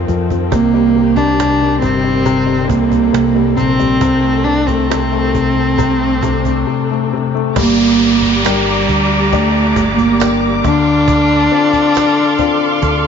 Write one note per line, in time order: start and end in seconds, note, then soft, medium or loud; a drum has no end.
0.00 5.75 D#3 medium
0.00 0.09 F3 medium
0.00 0.49 F3 medium
0.00 0.48 C4 medium
0.00 7.53 C4 medium
0.00 0.48 A4 medium
0.08 0.49 F2 medium
0.08 0.30 F3 medium
0.08 cajon bass soft
0.30 0.52 F3 medium
0.30 cajon bass soft
0.52 1.79 C2 medium
0.52 0.94 C3 medium
0.52 7.52 C3 medium
0.52 1.17 A#3 loud
0.52 2.24 G4 medium
0.52 cajon bass medium
0.74 1.16 G3 soft
0.96 1.38 C3 medium
1.16 1.61 G3 medium
1.16 1.81 D4 medium
1.16 cajon bass soft
1.40 1.81 C3 medium
1.40 cajon slap medium
1.62 2.02 G3 soft
1.81 2.66 G1 medium
1.81 2.24 C3 medium
1.81 2.69 C4 medium
1.81 cajon bass medium
2.04 2.45 G3 soft
2.25 2.67 C3 medium
2.25 7.52 A4 medium
2.25 cajon bass medium
2.46 2.89 G3 soft
2.68 3.10 C2 medium
2.68 3.11 C3 medium
2.68 3.55 A#3 medium
2.68 cajon bass medium
2.90 3.34 G3 soft
2.90 cajon bass medium
3.13 3.54 C2 medium
3.13 3.55 C3 medium
3.13 cajon slap loud
3.35 3.78 G3 medium
3.56 3.99 A#1 medium
3.56 4.00 C3 medium
3.56 4.46 C4 medium
3.56 cajon bass medium
3.79 4.01 G3 medium
3.79 cajon bass medium
4.01 5.74 C2 medium
4.01 4.44 C3 medium
4.01 cajon bass loud
4.23 4.66 A3 soft
4.44 4.89 C3 medium
4.44 4.67 D4 medium
4.66 5.10 A3 medium
4.66 7.11 C4 medium
4.66 cajon bass medium
4.90 5.33 C3 medium
4.90 cajon slap loud
5.12 5.54 A3 medium
5.34 5.77 C3 medium
5.34 cajon bass medium
5.56 5.99 A3 soft
5.78 6.63 C2 medium
5.78 6.22 C3 medium
5.78 7.54 D4 medium
5.78 cajon bass medium
6.01 6.44 A3 medium
6.23 6.66 C3 medium
6.23 cajon bass medium
6.45 6.90 A3 soft
6.45 cajon bass medium
6.67 7.12 C3 soft
6.91 7.33 A3 medium
7.13 7.55 C3 medium
7.35 7.56 A3 medium
7.56 8.85 G1 loud
7.56 10.60 G3 medium
7.56 8.41 A#3 medium
7.56 10.61 G4 medium
7.56 10.61 D5 medium
7.56 10.61 A#5 medium
7.56 13.07 D6 medium
7.56 cajon bass loud
7.56 downlifter medium
8.22 cajon bass medium
8.44 9.36 G3 medium
8.44 9.30 D4 soft
8.44 9.30 G4 soft
8.44 9.30 A#4 soft
8.44 cajon slap medium
8.44 tambourine medium
8.88 9.72 D2 medium
8.88 cajon bass medium
9.32 9.92 A3 medium
9.32 10.18 D4 soft
9.32 10.18 G4 soft
9.32 10.18 D5 medium
9.32 cajon bass medium
9.76 10.60 G1 medium
9.76 cajon bass medium
9.93 10.47 A#3 medium
9.98 cajon bass medium
10.20 10.63 D4 soft
10.20 10.63 G4 soft
10.20 10.63 A#4 soft
10.20 cajon slap loud
10.20 tambourine medium
10.64 11.47 D2 loud
10.64 13.07 D3 medium
10.64 13.07 D4 loud
10.64 13.07 A4 medium
10.64 13.07 F5 medium
10.64 13.07 C6 medium
10.64 cajon bass medium
11.08 cajon bass loud
11.52 12.36 C4 soft
11.52 12.37 D4 soft
11.52 12.37 F4 soft
11.73 cajon bass medium
11.95 cajon slap medium
11.95 tambourine medium
12.39 13.07 C4 soft
12.39 13.07 D4 soft
12.39 13.07 F4 medium
12.39 cajon bass medium
12.82 13.07 D2 loud
12.82 cajon bass medium